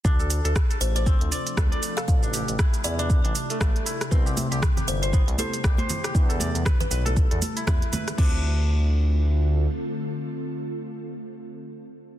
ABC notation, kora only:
X:1
M:4/4
L:1/16
Q:"Swing 16ths" 1/4=118
K:Ddor
V:1 name="Kora"
D A z A z A z d C z d z A d z A | z D G z E z E D z D z A, A, z E z | C G z G z G z c B, z c z G c z G | z A d z B z B A z A z E E z B z |
D2 z12 z2 | z16 |]